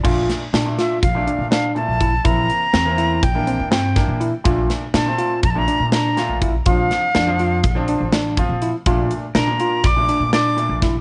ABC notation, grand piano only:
X:1
M:9/8
L:1/16
Q:3/8=82
K:Bblyd
V:1 name="Grand piano"
[B,,A,D]3 z2 [B,,A,D]2 z2 [B,,A,D]3 z2 [B,,A,E]2 z2 | [E,B,C]3 z2 [E,B,C]2 z2 [E,B,D]3 z2 [E,B,D]2 z2 | [B,,A,D]3 z2 [B,,A,C]2 z2 [B,,A,D]3 z2 [B,,A,F]2 z2 | [F,CD]3 z2 [F,CD]2 z2 [F,CD]3 z2 [F,CF]2 z2 |
[B,,A,D]3 z2 [B,,B,D]2 z2 [B,,A,D]3 z2 [B,,A,D]2 z2 |]